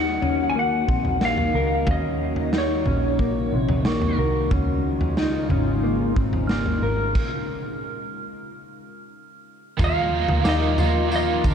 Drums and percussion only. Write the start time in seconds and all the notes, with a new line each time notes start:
0.22 floor tom
0.89 kick
1.05 floor tom
1.21 snare
1.37 floor tom
1.87 kick, floor tom
2.36 floor tom
2.53 snare
2.86 floor tom
3.19 kick
3.69 floor tom
3.85 snare
4.02 floor tom
4.51 kick, floor tom
5.01 floor tom
5.17 snare
5.50 floor tom
6.16 kick
6.33 floor tom
6.49 snare
6.66 floor tom
7.15 kick, crash
9.79 kick, floor tom, tambourine
10.28 floor tom
10.45 snare, tambourine
10.78 floor tom, tambourine
11.12 tambourine
11.44 kick, tambourine